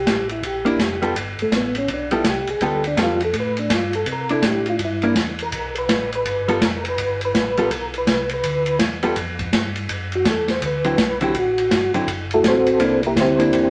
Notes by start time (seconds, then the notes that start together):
Already playing: G4
0.06 A1, kick, snare, hi-hat pedal, ride
0.29 E4, ride
0.42 A#1 G4, kick, ride
0.65 A#3 D4 E4, ride
0.79 F1, kick, snare, hi-hat pedal, ride
1.02 G3 B3 F4 A4, ride
1.15 G1, kick, ride
1.38 G1 A3, ride
1.51 A1, kick, snare, hi-hat pedal, ride
1.56 B3
1.75 C#4, ride
1.88 B1, kick, ride
1.94 D4
2.11 G3 B3 E4 F4 A4, ride
2.24 C2, kick, snare, hi-hat pedal, ride
2.29 G4
2.47 C2 G#4, ride
2.60 D2 G3 B3 F4 A4, kick, ride
2.66 A4
2.84 D4, ride
2.97 F2 G3 B3 F4 A4, kick, snare, hi-hat pedal, ride
3.03 F4
3.20 ride
3.24 A4
3.33 A2, kick, ride
3.40 B4
3.57 D4, ride
3.70 G2, kick, snare, hi-hat pedal, ride
3.75 F4
3.93 A4, ride
4.06 C3, kick, ride
4.12 A#4
4.29 D4 E4 A4, ride
4.42 A2, kick, snare, hi-hat pedal, ride
4.47 G4
4.66 F4, ride
4.79 G2, kick, ride
4.85 E4
5.02 A#3 D4 E4, ride
5.07 A#3
5.15 E2, kick, snare, hi-hat pedal, ride
5.39 A#4, ride
5.52 B1, kick, ride
5.75 B4, ride
5.89 A1, kick, snare, hi-hat pedal, ride
6.12 B4, ride
6.25 G1, kick, ride
6.48 G3 B3 F4 A4 A#4, ride
6.61 F1, kick, snare, hi-hat pedal, ride
6.85 B4, ride
6.98 G1, kick, ride
7.21 ride
7.25 B4
7.34 A1, kick, snare, hi-hat pedal, ride
7.57 G3 B3 F4 A4, ride
7.62 A#4
7.71 B1, kick, ride
7.94 ride
7.98 B4
8.07 C2, kick, snare, hi-hat pedal, ride
8.29 ride
8.34 B4
8.43 D2, kick, ride
8.66 ride
8.79 E2, kick, snare, hi-hat pedal, ride
9.03 G3 B3 F4 A4, ride
9.16 F2, kick, ride
9.39 kick, ride
9.53 G2, kick, snare, hi-hat pedal, ride
9.76 ride
9.89 F#2, kick, ride
10.12 F#4, ride
10.25 E2, kick, snare, hi-hat pedal, ride
10.30 A4
10.48 C5, snare, ride
10.61 D2, kick, ride
10.66 B4
10.84 D3 F#3 C4 E4, ride
10.98 B1, kick, snare, hi-hat pedal, ride
11.21 D3 F#3 C4 E4 G4, ride
11.34 A1, kick, ride
11.39 F#4
11.58 ride
11.71 G1, kick, snare, hi-hat pedal, ride
11.94 G1 D3 F#3 C4 E4, ride
12.07 F#1, kick, ride
12.31 A3 E4 F#4 A4, ride
12.43 A1, kick, snare, hi-hat pedal, ride
12.48 C4 F#4 A4 C5
12.66 ride
12.79 C2 A#3 D4 E4, kick, ride
13.03 E4 A#4, ride
13.07 A#3 G4
13.16 D2, kick, snare, hi-hat pedal, ride
13.20 C4 E4 G4 C5
13.39 A#3 D4 E4, ride
13.52 E2, kick, ride